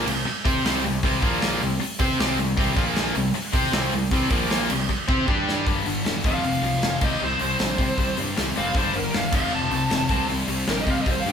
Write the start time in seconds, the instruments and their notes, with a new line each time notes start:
0.06 picked electric bass C2, distorted electric guitar C3 G3, crash
0.25 muted distorted electric guitar stroke, muted picked electric bass stroke
0.45 picked electric bass C3, distorted electric guitar C4 G4 C5, kick, open hi-hat
0.65 picked electric bass C2, distorted electric guitar C3 G3 C4, snare, open hi-hat
0.84 picked electric bass C2, distorted electric guitar C3 G3, open hi-hat
1.03 picked electric bass C2, distorted electric guitar C3 G3 C4, kick, open hi-hat
1.22 picked electric bass A#1, distorted electric guitar A#2 F3 A#3, kick, open hi-hat
1.41 snare, open hi-hat
1.61 picked electric bass C2, distorted electric guitar C3 G3, open hi-hat
1.80 muted distorted electric guitar stroke, muted picked electric bass stroke, open hi-hat
1.99 picked electric bass C3, distorted electric guitar C4 G4 C5, kick, open hi-hat
2.19 picked electric bass C2, distorted electric guitar C3 G3 C4, snare, open hi-hat
2.39 picked electric bass C2, distorted electric guitar C3 G3, open hi-hat
2.57 picked electric bass C2, distorted electric guitar C3 G3 C4, kick, open hi-hat
2.76 picked electric bass A#1, distorted electric guitar A#2 F3 A#3, kick, open hi-hat
2.95 snare, open hi-hat
3.15 picked electric bass C2, distorted electric guitar C3 G3, open hi-hat
3.34 muted picked electric bass stroke, muted distorted electric guitar stroke, open hi-hat
3.53 picked electric bass C3, distorted electric guitar C4 G4 C5, kick, open hi-hat
3.64 snare
3.72 picked electric bass C2, distorted electric guitar C3 G3 C4, snare, open hi-hat
3.92 picked electric bass C2, distorted electric guitar C3 G3, open hi-hat
4.11 picked electric bass C2, distorted electric guitar C3 G3 C4, kick, open hi-hat
4.30 picked electric bass A#1, distorted electric guitar A#2 F3 A#3, kick, open hi-hat
4.50 snare, open hi-hat
4.70 picked electric bass C2, distorted electric guitar C3 G3, crash
4.89 muted distorted electric guitar stroke, muted picked electric bass stroke, kick
5.08 picked electric bass C3, distorted electric guitar C4 G4 C5, kick
5.28 picked electric bass G2, distorted electric guitar G3 D4 G4, kick
5.49 snare
5.66 picked electric bass G1, distorted electric guitar G2 D3 G3, kick, open hi-hat
5.86 picked electric bass G1, distorted electric guitar G2 D3, open hi-hat
6.05 picked electric bass E1, distorted electric guitar G2 D3, snare, open hi-hat
6.24 picked electric bass F1, distorted electric guitar F2 C3 F3, lead electric guitar F5, kick, open hi-hat
6.43 picked electric bass F1, distorted electric guitar F2 C3, open hi-hat
6.63 picked electric bass C2, distorted electric guitar F2 C3, open hi-hat
6.74 snare
6.82 picked electric bass F1, distorted electric guitar F2 C3, snare, open hi-hat
7.01 picked electric bass C2, distorted electric guitar C3 G3 C4, lead electric guitar D#5, kick, crash
7.22 picked electric bass C2, distorted electric guitar C3 G3, lead electric guitar C5
7.39 picked electric bass C2, distorted electric guitar C3 G3, lead electric guitar C5, open hi-hat
7.59 picked electric bass A#1, distorted electric guitar C3 G3, snare, open hi-hat
7.78 distorted electric guitar C3 G3 C4, picked electric bass C3, kick, open hi-hat
7.98 picked electric bass C2, distorted electric guitar C3 G3, kick, open hi-hat
8.17 picked electric bass G2, distorted electric guitar C3 G3, open hi-hat
8.36 picked electric bass C2, distorted electric guitar C3 G3, snare, open hi-hat
8.55 picked electric bass F1, distorted electric guitar C3 G3 C4, lead electric guitar F5, open hi-hat
8.75 picked electric bass G1, distorted electric guitar G2 D3 G3, lead electric guitar C5, kick, open hi-hat
8.94 picked electric bass G1, distorted electric guitar G2 D3, lead electric guitar A#4, open hi-hat
9.13 picked electric bass E1, distorted electric guitar G2 D3, lead electric guitar F5, snare, open hi-hat
9.32 picked electric bass F1, distorted electric guitar F2 C3 F3, lead electric guitar F5, kick, crash
9.52 picked electric bass F1, distorted electric guitar F2 C3, lead electric guitar A5
9.71 picked electric bass C2, distorted electric guitar F2 C3, open hi-hat
9.90 picked electric bass F1, distorted electric guitar F2 C3, snare, open hi-hat
10.09 picked electric bass C2, distorted electric guitar C3 G3 C4, kick, open hi-hat
10.28 picked electric bass C2, distorted electric guitar C3 G3, open hi-hat
10.48 picked electric bass C2, distorted electric guitar C3 G3, open hi-hat
10.67 picked electric bass A#1, distorted electric guitar C3 G3, lead electric guitar A#4, snare, open hi-hat
10.81 lead electric guitar D#5
10.86 picked electric bass C3, distorted electric guitar C3 G3 C4, lead electric guitar F5, kick, open hi-hat
11.01 lead electric guitar D#5
11.06 picked electric bass C2, distorted electric guitar C3 G3, kick, open hi-hat
11.11 lead electric guitar C5
11.20 lead electric guitar F5
11.25 picked electric bass G2, distorted electric guitar C3 G3, open hi-hat